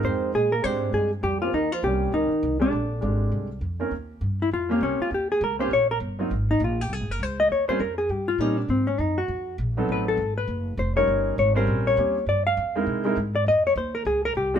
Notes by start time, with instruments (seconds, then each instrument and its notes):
Already playing: grand piano G#3 C4 D#4 F4 A#4
0.03 upright bass F2, trombone C4, hollow-body jazz guitar C5
0.34 upright bass A#2, trombone G#3, hollow-body jazz guitar G#4
0.52 trombone A#3, hollow-body jazz guitar A#4
0.62 upright bass G#2, grand piano G#3 C4 D4 F4 G4, trombone C4, hollow-body jazz guitar C5
0.93 upright bass G2, trombone G#3, hollow-body jazz guitar G#4
1.23 upright bass F2, trombone G3, hollow-body jazz guitar G4
1.41 trombone F3, grand piano A#3 C4 C#4 F4 G4, hollow-body jazz guitar F4
1.53 upright bass D#2, trombone D#3, hollow-body jazz guitar D#4
1.72 trombone F3, hollow-body jazz guitar F4
1.82 upright bass C2, trombone G3, grand piano A#3 C4 C#4 F4 G4, hollow-body jazz guitar G4
2.12 upright bass C#2, trombone D#3, hollow-body jazz guitar D#4
2.31 muted upright bass stroke
2.43 upright bass C2
2.60 trombone D3, grand piano G#3 C4 D4 F4 G4, hollow-body jazz guitar D4
2.72 upright bass A#1
3.01 upright bass G#1, grand piano G#3 C4 D4 F4 G4
3.32 upright bass C2
3.61 upright bass F2
3.79 grand piano D#3 A#3 C4 C#4 F4 A#4
3.91 upright bass D#2
4.21 upright bass G2
4.42 hollow-body jazz guitar E4
4.51 upright bass F2, hollow-body jazz guitar F4
4.69 grand piano A#3 C4 C#4 F4 G4, hollow-body jazz guitar A#3
4.80 upright bass C2, hollow-body jazz guitar C#4
4.99 hollow-body jazz guitar F4, muted upright bass stroke
5.11 upright bass D#2, hollow-body jazz guitar G4
5.32 hollow-body jazz guitar G#4
5.41 upright bass C#2, hollow-body jazz guitar A#4
5.59 grand piano A#3 C4 C#4 F4 G4, hollow-body jazz guitar C5
5.71 upright bass A#1, hollow-body jazz guitar C#5
5.91 hollow-body jazz guitar A#4
6.00 upright bass G1
6.19 grand piano F#3 A#3 C4 D#4 F4
6.31 upright bass G#1
6.51 hollow-body jazz guitar D#4
6.60 upright bass A#1
6.64 hollow-body jazz guitar F4
6.81 hollow-body jazz guitar G4
6.89 upright bass C2, hollow-body jazz guitar G#4
7.00 upright bass G#1
7.09 upright bass F#1, hollow-body jazz guitar A#4
7.19 upright bass C#2, hollow-body jazz guitar C5
7.40 hollow-body jazz guitar D#5
7.50 upright bass D#2, hollow-body jazz guitar C#5
7.68 grand piano G3 A#3 C4 C#4 F4, hollow-body jazz guitar C5, muted upright bass stroke
7.79 upright bass F2, hollow-body jazz guitar A#4
7.98 hollow-body jazz guitar G#4
8.09 upright bass G2, hollow-body jazz guitar G4
8.28 hollow-body jazz guitar F4
8.38 upright bass A#2, grand piano G3 A#3 C4 C#4 G4, hollow-body jazz guitar D#4
8.58 hollow-body jazz guitar D4
8.68 upright bass G#2, hollow-body jazz guitar C4
8.87 hollow-body jazz guitar C#4
8.99 upright bass F#2, hollow-body jazz guitar D#4
9.18 hollow-body jazz guitar F#4
9.28 upright bass F2
9.58 upright bass A#1
9.77 grand piano F#3 B3 C4 D#4 A4
9.88 upright bass A1, hollow-body jazz guitar B4
10.08 hollow-body jazz guitar A4
10.17 upright bass G#1
10.38 hollow-body jazz guitar B4
10.47 upright bass F#1
10.77 upright bass F1, hollow-body jazz guitar C5
10.95 grand piano G3 C#4 D#4 F4 A#4, hollow-body jazz guitar C#5
11.08 upright bass G1
11.38 upright bass G#1, hollow-body jazz guitar C#5
11.55 grand piano G3 C4 C#4 F4 A#4, hollow-body jazz guitar C5
11.67 upright bass A#1
11.87 hollow-body jazz guitar C#5
11.97 upright bass D#2, grand piano G3 C4 C#4 F4 G4
12.26 upright bass G2, hollow-body jazz guitar D5
12.47 hollow-body jazz guitar F5
12.57 upright bass F2
12.76 grand piano G#3 C4 D#4 E4 A#4
12.87 upright bass C3
13.04 grand piano G#3 C4 D#4 E4 A#4
13.17 upright bass G#2
13.36 hollow-body jazz guitar D5
13.46 upright bass F2, hollow-body jazz guitar D#5
13.67 hollow-body jazz guitar C#5
13.76 upright bass D#2, hollow-body jazz guitar C5
13.95 hollow-body jazz guitar A#4
14.05 upright bass C#2, hollow-body jazz guitar G#4
14.25 hollow-body jazz guitar A#4
14.35 upright bass C2, hollow-body jazz guitar G4
14.54 grand piano G#3 C4 D4 F4 G4, hollow-body jazz guitar F#4